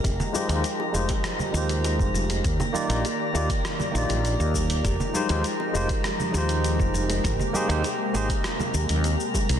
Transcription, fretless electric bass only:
X:1
M:4/4
L:1/16
Q:1/4=100
K:Fdor
V:1 name="Fretless electric bass" clef=bass
F,,, z2 E,, z2 F,,, z3 E,,3 F,,, F,,,2 | E,, z2 B,,, z2 E,, z3 B,,, B,,,2 E,,3 | F,,, z2 E,, z2 F,,, z3 E,,3 F,,, F,,,2 | A,,, z2 E,, z2 A,,, z3 E,, E,,2 z2 C,, |]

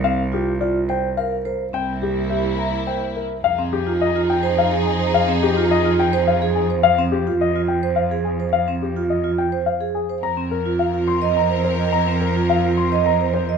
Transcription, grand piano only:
X:1
M:3/4
L:1/16
Q:1/4=106
K:Gphr
V:1 name="Grand piano"
f z G z d z g z f z B z | g z G z =e z b z g z B z | [K:Fm] f z G z e z g z f z A z | f z G z e z g z f z A z |
f z G z e z g z f z A z | f z G z e z g z f z A z | b z B z f z c' z b z c z | b z B z f z c' z b z c z |]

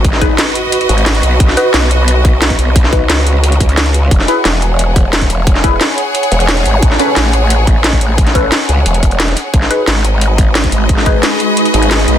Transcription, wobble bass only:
X:1
M:4/4
L:1/8
Q:1/4=177
K:G#phr
V:1 name="Wobble bass" clef=bass
G,,,2 z3 G,,,2 B,,, | B,,, z B,,,4- B,,, B,,,- | B,,,2 C,,3 C,,3 | E,,, z E,,,4- E,,, E,,,- |
E,,,2 z3 E,,,2 G,,, | A,,, z A,,,4- A,,, A,,,- | A,,,2 z C,, E,,,3 z | G,,, z G,,,4- G,,, G,,,- |
G,,,2 z3 G,,,2 B,,, |]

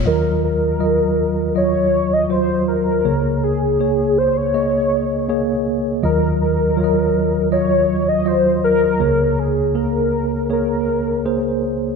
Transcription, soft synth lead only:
X:1
M:4/4
L:1/16
Q:1/4=80
K:Ebdor
V:1 name="Soft synth lead"
B2 B6 d3 e c2 B2- | B2 A4 c d6- d z2 | B2 B6 d3 e c2 B2- | B2 A2 B4 B6 z2 |]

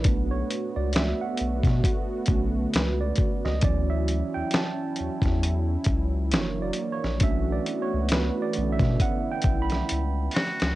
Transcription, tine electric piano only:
X:1
M:4/4
L:1/16
Q:"Swing 16ths" 1/4=67
K:Bm
V:1 name="Tine electric piano"
B c2 d e f4 z3 B d2 ^d | d e2 g a4 z4 (3c2 d2 c2 | (3e2 d2 c2 (3B2 d2 e2 (3f2 g2 b2- b3 z |]
V:2 name="Tine electric piano"
[A,B,D]8- [A,B,D]2 [D,A,C]2 z4 | [E,F,C]12 [E,^A,D]2 z2 | [A,CD]6 [D,A,C]2 z8 |]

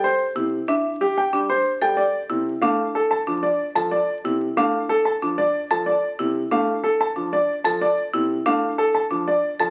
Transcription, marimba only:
X:1
M:6/4
L:1/8
Q:1/4=185
K:F
V:1 name="Marimba"
z2 E z D z3 D z2 A | z2 E z D z3 D z2 A | z2 E z D z3 D z2 A | z2 E z D z3 D z2 A |
z2 E z D z3 D z2 A |]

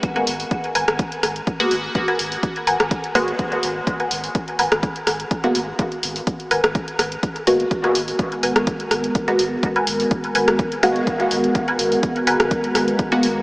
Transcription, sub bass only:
X:1
M:4/4
L:1/16
Q:"Swing 16ths" 1/4=125
K:G#m
V:1 name="Sub bass" clef=bass
z2 G,,, z3 G,,, G,,, z2 G,,, z3 G,,, z | z2 G,,, z3 G,,, G,,, z2 G,,, z3 G,,, z | z2 G,,, z3 G,,, G,,, z2 G,,, z3 G,,, z | z2 G,,, z3 G,,, G,,, z2 G,,, z3 G,,, z |
z2 G,,, z3 G,,, G,,, z2 G,,, z3 G,,, z | z2 G,,, z3 G,,, G,,, z2 G,,, z3 G,,, z | z2 G,,, z3 G,,, G,,, z2 G,,, z3 G,,, z |]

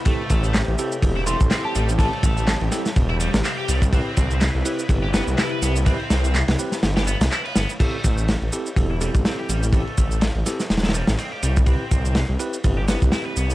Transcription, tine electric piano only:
X:1
M:4/4
L:1/8
Q:"Swing 16ths" 1/4=124
K:Am
V:1 name="Tine electric piano"
[CEGA] z2 [CEGA] [CEGA] [CEGA]3 | [CEGA] z2 [CEGA] z4 | [CEGB] z2 [CEGB] [CEGB] [CEGB]3 | [CEGB] z2 [CEGB] z4 |
[CEGA] z2 [CEGA] [CEGA] [CEGA]3 | [CEGA] z2 [CEGA] z4 | [CEGB] z2 [CEGB] [CEGB] [CEGB]3 |]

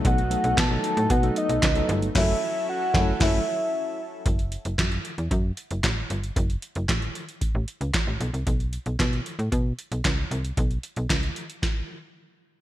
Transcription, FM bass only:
X:1
M:4/4
L:1/16
Q:1/4=114
K:F#dor
V:1 name="FM bass" clef=bass
B,,,3 B,,, B,,2 z A,, B,,2 z B,,, C,,2 =G,,,2 | F,,,2 z4 F,,,2 F,,,2 z6 | F,,,3 F,,, F,,2 z E,, F,,2 z F,,, A,,,2 =G,,,2 | F,,,2 z F,,, A,,,2 z3 A,,, z C,, z A,,, B,,, ^B,,, |
B,,,3 B,,, B,,2 z A,, B,,2 z B,,, C,,2 ^B,,,2 | B,,,2 z B,,, C,,2 z8 z2 |]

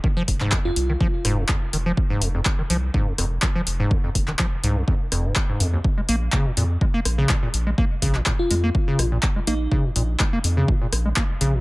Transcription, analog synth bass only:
X:1
M:4/4
L:1/8
Q:"Swing 16ths" 1/4=124
K:Fm
V:1 name="Analog synth bass" clef=bass
z F,,, z C,, z F,,, z F,,, | z F,,, z C,, z F,,, z F,,, | z F,,, z C,, z F,,, z F,, | z B,,, z F,, z B,,, z B,,, |
z B,,, z F,, z B,,, z B,,, | z B,,, z F,, z B,,, z B,,, |]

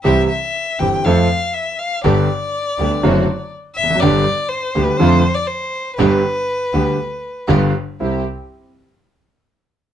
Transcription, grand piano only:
X:1
M:4/4
L:1/16
Q:1/4=121
K:C
V:1 name="Grand piano" clef=bass
[C,,C,E,G,CG]2 z4 [G,,,G,,E,G,CG]2 [F,,F,A,CA]2 z6 | [G,,,G,,D,G,B,G]2 z4 [D,,D,G,B,G]2 [^F,,D,^F,A,C^F]2 z4 z/2 E,,/2 =F,,/2 ^F,,/2 | [G,,,G,,D,G,B,G]2 z4 [D,,D,G,B,G]2 [F,,D,F,A,F]2 z6 | [G,,,G,,D,G,B,G]2 z4 [D,,D,G,B,G]2 z4 [G,,,G,,D,G,B,F]2 z2 |
[C,,G,CE]2 z12 z2 |]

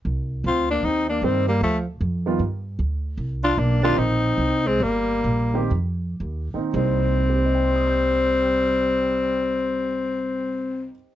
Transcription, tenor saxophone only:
X:1
M:4/4
L:1/8
Q:"Swing" 1/4=139
K:Cm
V:1 name="Tenor saxophone"
z2 F D E D C B, | =A, z6 z | z F D F E3 C | B,4 z4 |
C8- | C8 |]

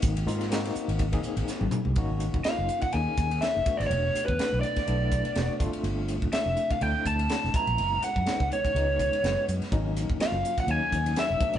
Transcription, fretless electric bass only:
X:1
M:4/4
L:1/16
Q:"Swing 16ths" 1/4=124
K:Gblyd
V:1 name="Fretless electric bass" clef=bass
A,,,2 A,,4 z A,,,3 z A,,, z A,,, z C,, | A,,,3 G,,, z G,,, z2 E,, z E,,2 z G,,, z A,,, | =E,,,2 z =E,, z =B,,, z2 B,,,3 z E,,, z =G,,, z | =G,,,3 F,,, z F,,, z2 =D,, z D,,2 z F,,, z B,,, |
G,,,2 z G,, z D,, z2 D,,3 z G,,, z G,, z | A,,,3 G,,, z G,,, z2 E,, z E,,2 z F,,, z A,,, |]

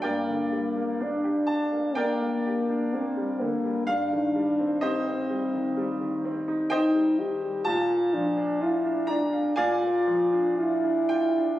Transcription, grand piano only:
X:1
M:4/4
L:1/16
Q:1/4=63
K:Gm
V:1 name="Grand piano"
[Bdg]6 a2 [Bdg]8 | f4 [Gce]8 [ceg]4 | [K:Bblyd] a6 b2 [df^g]6 =g2 |]
V:2 name="Grand piano"
G,, D, G, B, D G D B, D B, G D B, G, D, G, | G,, E, G, C E C G, E, G, E, C E C G, E, G, | [K:Bblyd] B,, B, F, D F D d f B,, B, F, D F D F D |]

